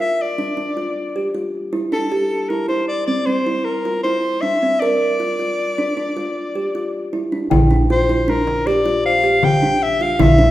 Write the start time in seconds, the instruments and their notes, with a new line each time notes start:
0.00 kalimba F4, soprano saxophone E5
0.21 soprano saxophone D5
0.38 kalimba D4
0.57 kalimba D4
0.77 kalimba F4
1.16 kalimba G4
1.35 kalimba F4
1.73 kalimba E4
1.92 kalimba D4, soprano saxophone A4
2.12 kalimba G4
2.49 kalimba E4, soprano saxophone A#4
2.68 kalimba E4, soprano saxophone C5
2.88 soprano saxophone D5
3.06 kalimba C4, soprano saxophone D5
3.26 kalimba C4, soprano saxophone C5
3.47 kalimba E4
3.64 soprano saxophone A#4
3.85 kalimba F4
4.03 kalimba E4, soprano saxophone C5
4.41 kalimba D4, soprano saxophone E5
4.63 kalimba C4
4.80 kalimba A#4, soprano saxophone D5
5.20 kalimba F4
5.39 kalimba F4
5.78 kalimba D4
5.97 kalimba D4
6.17 kalimba F4
6.55 kalimba G4
6.75 kalimba F4
7.13 kalimba E4
7.32 kalimba D4
7.50 upright bass A#1, kalimba E4, celesta G5, frame drum
7.71 kalimba D4
7.90 kalimba F4, soprano saxophone C5
8.09 kalimba E4
8.28 kalimba D4, soprano saxophone A#4
8.47 frame drum
8.66 kalimba G4, soprano saxophone D5
8.86 kalimba F4
9.05 celesta C5, soprano saxophone F5
9.24 kalimba G4
9.43 soprano saxophone G5, frame drum
9.63 kalimba D4
9.82 soprano saxophone E5
10.01 kalimba F4, soprano saxophone F5
10.19 upright bass A#1, kalimba E4, soprano saxophone E5, frame drum
10.38 kalimba D4